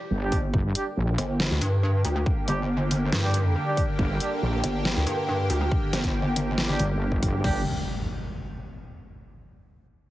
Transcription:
0.10 G1
0.21 G3 D4 G4
0.32 G1, kick, open hi-hat
0.54 G1 D3 A#3 G4, kick
0.75 G3 D4 G4, closed hi-hat
0.97 A#1
1.18 G1, closed hi-hat
1.40 snare
1.51 D2
1.61 G2, closed hi-hat
2.05 D2, open hi-hat
2.26 kick
2.48 G1 G3 D4 G4, closed hi-hat
2.91 closed hi-hat
3.13 G2, snare
3.23 G3 D4 G4
3.34 closed hi-hat
3.67 G3 D4 G4
3.77 kick, open hi-hat
3.99 G1, kick
4.20 G3 D4 G4, closed hi-hat
4.42 A#1
4.64 G1, closed hi-hat
4.85 snare
4.96 D2
5.07 G2, closed hi-hat
5.50 D2, open hi-hat
5.72 kick
5.93 G1, snare, closed hi-hat
6.04 kick, closed hi-hat
6.36 closed hi-hat
6.58 G1, snare
6.69 G3 D4 G4
6.79 G1, closed hi-hat
7.12 kick
7.23 kick, open hi-hat
7.44 G1 G3 D4 G4, kick, crash, impact

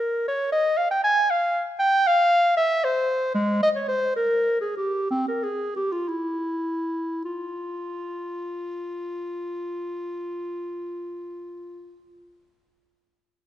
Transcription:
Already playing: A#4
0.28 C#5
0.52 D#5
0.78 F5
0.91 G5
1.04 G#5
1.31 F5
1.80 G5
2.07 F5
2.57 E5
2.85 C5
3.35 G#3
3.63 D#5
3.76 C#5
3.89 C5
4.16 A#4
4.61 G#4
4.77 G4
5.11 C4
5.28 A#4
5.44 G#4
5.76 G4
5.92 F4
6.08 E4
7.25 F4

